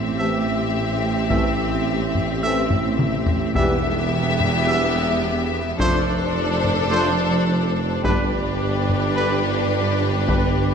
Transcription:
Already playing: double bass section A1, tuba A1, cello section A2, viola section C4, violin section G4 E5
0.18 trombone section E3 A3, french horn section C4 G4, trumpet E5
1.30 trombone section E3 A3, french horn section C4 G4, trumpet E5, taiko
2.15 taiko low-mid
2.43 trombone section E3 A3, french horn section C4 G4, trumpet E5
2.70 taiko low-mid
2.99 taiko mid
3.26 taiko low
3.55 tuba E1, double bass section E1, cello section E2, timpani E2, trombone section E3 G3, french horn section B3 G4, viola section B3, violin section G4 E5, trumpet E5, taiko
4.40 taiko low-mid
4.66 trombone section E3 G3, french horn section B3 G4, trumpet E5
5.78 double bass section F1, tuba F1, cello section F2, trombone section F3 A3, viola section D4, french horn section D4 F4, violin section A4 C5, trumpet C5, taiko
6.64 taiko low-mid
6.90 trombone section F3 A3, french horn section D4 F4, trumpet C5
8.03 tuba G1, double bass section G1, cello section G2, trombone section D3 G3, french horn section D4 G4, viola section D4, violin section G4 B4, trumpet B4, taiko
8.89 taiko low-mid
9.16 trombone section D3 G3, french horn section D4 G4, trumpet B4
10.28 trombone section D3 G3, french horn section D4 G4, trumpet B4, taiko

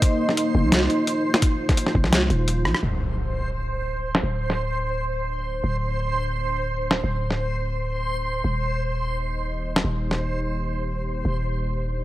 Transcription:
Already playing: analog synth pad A#3 D#4 G4 D#5, synth texture C5
0.02 kick, closed hi-hat
0.26 analog synth pad F4, snare
0.37 closed hi-hat
0.55 808-style bass F1
0.64 808-style bass C2
0.72 snare, closed hi-hat
0.90 closed hi-hat
1.07 closed hi-hat
1.34 snare
1.42 kick, closed hi-hat
1.69 kick, snare, closed hi-hat
1.77 closed hi-hat
1.86 snare
1.95 808-style bass F1, kick
2.04 808-style bass C2, snare
2.13 snare, closed hi-hat
2.30 808-style bass D#1, closed hi-hat
2.48 closed hi-hat
2.65 808-style bass A#1, cross-stick
2.75 cross-stick
2.82 808-style bass D1, analog synth pad A3, synth texture C5, impact
3.01 analog synth pad D4
3.56 analog synth pad D5
4.15 snare
4.23 808-style bass D1
4.50 snare
5.64 808-style bass D1
6.91 snare
7.04 808-style bass D1
7.31 snare
8.44 808-style bass D#1, analog synth pad A#3
8.59 analog synth pad D#4
8.82 analog synth pad D#5
8.94 analog synth pad G4
9.76 snare
9.84 808-style bass D#1
10.11 snare
11.25 808-style bass D#1
11.68 analog synth pad D5

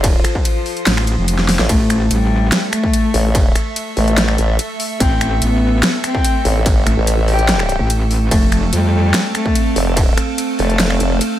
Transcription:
Already playing: wobble bass F1, ambient pad F3 F4 A4 C5
0.04 kick, closed hi-hat, ride
0.24 finger snap, closed hi-hat
0.35 kick
0.45 closed hi-hat, ride
0.66 open hi-hat
0.77 closed hi-hat
0.86 wobble bass A1, snare, closed hi-hat, ride
0.97 finger snap
1.07 closed hi-hat
1.18 wobble bass F1
1.28 closed hi-hat, ride
1.39 snare
1.49 snare, open hi-hat
1.59 wobble bass A1, snare
1.69 wobble bass A1, cello A3, ambient pad A3 A4 E5, kick, closed hi-hat, ride
1.90 finger snap, closed hi-hat
2.11 wobble bass A1, cello G3, closed hi-hat, ride
2.52 snare, closed hi-hat, ride
2.73 cello A3, finger snap, closed hi-hat
2.83 kick
2.93 closed hi-hat, ride
3.14 wobble bass A1, open hi-hat
3.35 kick, closed hi-hat, ride
3.55 finger snap, closed hi-hat
3.76 closed hi-hat, ride
3.97 wobble bass A1, cello A3, open hi-hat
4.08 closed hi-hat
4.18 snare, closed hi-hat, ride
4.28 finger snap
4.38 wobble bass A1, closed hi-hat
4.59 closed hi-hat, ride
4.80 open hi-hat
5.00 wobble bass A1, cello C4, kick, closed hi-hat, ride
5.21 finger snap, closed hi-hat
5.42 wobble bass A1, cello B3, closed hi-hat, ride
5.83 snare, closed hi-hat, ride
6.04 cello C4, finger snap, closed hi-hat
6.15 kick
6.24 closed hi-hat, ride
6.45 wobble bass A1, open hi-hat
6.66 kick, closed hi-hat, ride
6.87 wobble bass A1, finger snap, closed hi-hat
6.97 wobble bass A1
7.07 closed hi-hat, ride
7.28 cello G4, open hi-hat
7.39 closed hi-hat
7.49 snare, closed hi-hat, ride
7.59 finger snap
7.69 closed hi-hat
7.80 wobble bass A1
7.90 closed hi-hat, ride
8.11 open hi-hat
8.31 wobble bass F1, ambient pad A3 C4 F5, cello A3, kick, closed hi-hat, ride
8.52 finger snap, closed hi-hat
8.73 wobble bass F2, cello G3, closed hi-hat, ride
9.14 snare, closed hi-hat, ride
9.35 cello A3, finger snap, closed hi-hat
9.46 kick
9.55 closed hi-hat, ride
9.76 wobble bass F1, open hi-hat
9.97 kick, closed hi-hat, ride
10.18 finger snap, closed hi-hat
10.38 closed hi-hat, ride
10.59 wobble bass F1, cello A3, open hi-hat
10.70 closed hi-hat
10.80 snare, closed hi-hat, ride
10.90 finger snap
11.00 wobble bass F1, closed hi-hat
11.21 closed hi-hat, ride

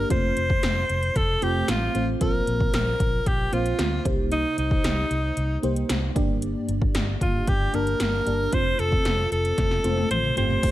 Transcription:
Already playing: fm electric piano A#3 D4 G4 D5, alto saxophone A#4
0.09 fingered electric bass F1, fm electric piano A3 C4 F4 C5, alto saxophone C5, kick, closed hi-hat
0.37 fingered electric bass F1, closed hi-hat
0.50 kick
0.63 fingered electric bass F1, snare, closed hi-hat
0.89 fingered electric bass F1, closed hi-hat
1.03 closed hi-hat
1.16 fingered electric bass F1, alto saxophone A4, kick, closed hi-hat
1.41 fingered electric bass F1, fm electric piano A3 C4 F4 C5, alto saxophone G4, closed hi-hat
1.68 fingered electric bass A1, alto saxophone F4, snare, closed hi-hat
1.94 fingered electric bass A1, fm electric piano A3 C4 F4 C5, closed hi-hat
2.20 fingered electric bass A#1, fm electric piano A#2 A#3 C4 F4 C5, alto saxophone A#4, kick, closed hi-hat
2.47 fingered electric bass A#1, closed hi-hat
2.60 kick
2.74 fingered electric bass A#1, alto saxophone A#4, snare, closed hi-hat
3.00 fingered electric bass A#1, kick, closed hi-hat
3.26 fingered electric bass A#1, alto saxophone G4, kick, closed hi-hat
3.52 fingered electric bass A#1, fm electric piano A#3 C4 F4 C5, alto saxophone F4, closed hi-hat
3.66 closed hi-hat
3.79 fingered electric bass D2, snare, closed hi-hat
4.05 fingered electric bass C2, fm electric piano C3 A#3 D#4 G4 C5, kick, closed hi-hat
4.32 alto saxophone D#4, closed hi-hat
4.58 fingered electric bass C2, alto saxophone D#4, closed hi-hat
4.71 kick
4.84 fingered electric bass C2, snare, closed hi-hat
5.10 fingered electric bass C2, closed hi-hat
5.37 fingered electric bass C2, closed hi-hat
5.62 fingered electric bass C2, fm electric piano A#3 D#4 G4 C5, closed hi-hat
5.76 closed hi-hat
5.89 fingered electric bass C2, snare, closed hi-hat
6.15 fingered electric bass G1, fm electric piano G2 A#3 D4 G4 D5, kick, closed hi-hat
6.42 closed hi-hat
6.68 fingered electric bass G1, closed hi-hat
6.82 kick
6.95 fingered electric bass G1, snare, closed hi-hat
7.21 fingered electric bass G1, alto saxophone F4, kick, closed hi-hat
7.47 fingered electric bass G1, alto saxophone G4, kick, closed hi-hat
7.73 fingered electric bass G1, fm electric piano A#3 D4 G4 A5, alto saxophone A#4, closed hi-hat
7.87 closed hi-hat
8.00 fingered electric bass G1, snare, closed hi-hat
8.26 fingered electric bass G1, fm electric piano A#3 D4 G4 D5, closed hi-hat
8.52 fingered electric bass F1, fm electric piano A3 C4 F4 C5, alto saxophone C5, kick, closed hi-hat
8.79 fingered electric bass F1, alto saxophone A4, closed hi-hat
8.92 kick
9.05 fingered electric bass F1, snare, closed hi-hat
9.31 fingered electric bass F1, alto saxophone A4, closed hi-hat
9.45 closed hi-hat
9.58 fingered electric bass F1, kick, snare, closed hi-hat
9.71 snare
9.84 fingered electric bass F1, fm electric piano A3 C4 F4 C5, closed hi-hat, high tom
9.97 high tom
10.11 fingered electric bass A1, alto saxophone C5, closed hi-hat, mid tom
10.24 mid tom
10.36 fingered electric bass G1, fm electric piano A3 C4 F4 G4, alto saxophone C5, closed hi-hat, floor tom
10.50 floor tom
10.62 fingered electric bass F1, analog synth pad F3, fm electric piano A3 F4 G4 C5, kick, closed hi-hat, crash

